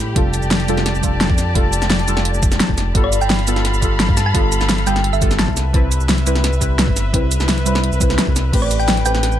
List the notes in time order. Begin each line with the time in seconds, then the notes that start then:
Already playing: A2 A3 C4 G4 B4 B5
0.15 F1 G3 D4 F4 A4 D5 A5, kick, closed hi-hat
0.34 closed hi-hat, shaker
0.43 F1, shaker
0.51 snare, closed hi-hat
0.60 closed hi-hat
0.68 F1 G3 D4 F4 A4, closed hi-hat, shaker
0.77 snare, closed hi-hat
0.86 snare, closed hi-hat
0.95 F1, shaker
1.02 G3 D4 F4 A4, kick, closed hi-hat, shaker
1.21 snare, closed hi-hat
1.30 F2, kick
1.38 snare, closed hi-hat, shaker
1.54 F1 G3 D4 F4 A4, kick, closed hi-hat
1.73 closed hi-hat, shaker
1.82 F1, snare, shaker
1.90 snare, closed hi-hat
1.99 closed hi-hat
2.07 F1 G3 D4 F4 A4, closed hi-hat, shaker
2.17 snare, closed hi-hat
2.25 closed hi-hat
2.34 F1, shaker
2.43 kick, closed hi-hat, shaker
2.52 snare, closed hi-hat, shaker
2.60 snare, closed hi-hat
2.69 F1, kick
2.78 snare, closed hi-hat, shaker
2.94 G1 G3 B3 F4 A4 F5 B5, kick, closed hi-hat
3.04 D5
3.13 closed hi-hat, shaker
3.21 G1 G5, shaker
3.30 snare, closed hi-hat
3.39 closed hi-hat
3.47 G1 G3 B3 F4 A4, closed hi-hat, shaker
3.56 snare, closed hi-hat
3.65 snare, closed hi-hat
3.74 G1, shaker
3.81 G3 B3 F4 A4, kick, closed hi-hat, shaker
4.00 snare, closed hi-hat
4.09 G2, kick
4.17 A5, snare, closed hi-hat, shaker
4.26 A5
4.33 G1 G3 B3 F4 A4, kick, closed hi-hat
4.52 closed hi-hat, shaker
4.61 G1, snare, shaker
4.69 snare, closed hi-hat
4.78 closed hi-hat
4.86 G1 G3 B3 F4 A4 G5, closed hi-hat, shaker
4.96 snare, closed hi-hat
5.04 closed hi-hat
5.13 G1 E5, shaker
5.21 G3 B3 F4 A4, kick, closed hi-hat, shaker
5.31 snare, closed hi-hat, shaker
5.39 A5, snare, closed hi-hat
5.48 C2, kick
5.57 B4 E5, snare, closed hi-hat, shaker
5.73 C2 G3 C4 E4 B4, kick, closed hi-hat
5.92 closed hi-hat, shaker
6.01 C2, shaker
6.09 snare, closed hi-hat
6.18 closed hi-hat
6.26 C2 G3 C4 E4 B4, closed hi-hat, shaker
6.36 snare, closed hi-hat
6.44 snare, closed hi-hat
6.53 C2, shaker
6.60 G3 C4 E4 B4, kick, closed hi-hat, shaker
6.79 snare, closed hi-hat
6.88 G1, kick
6.96 snare, closed hi-hat, shaker
7.13 C2 G3 C4 E4 B4, kick, closed hi-hat
7.31 closed hi-hat, shaker
7.40 C2, snare, shaker
7.49 snare, closed hi-hat
7.58 closed hi-hat
7.65 C2 G3 C4 E4 B4, closed hi-hat, shaker
7.75 snare, closed hi-hat
7.84 closed hi-hat
7.92 C2, shaker
8.00 G3 C4 E4 B4, kick, closed hi-hat, shaker
8.10 snare, closed hi-hat
8.19 snare, closed hi-hat
8.27 C2, kick
8.36 snare, closed hi-hat, shaker
8.52 A1 A3 C4 G4 B4 G5, kick, closed hi-hat, crash
8.62 D5
8.71 closed hi-hat, shaker
8.80 A1 G5, shaker
8.88 snare, closed hi-hat
8.97 closed hi-hat
9.05 A1 A3 C4 G4 B4 G5, closed hi-hat, shaker
9.15 snare, closed hi-hat
9.23 snare, closed hi-hat
9.32 A1, shaker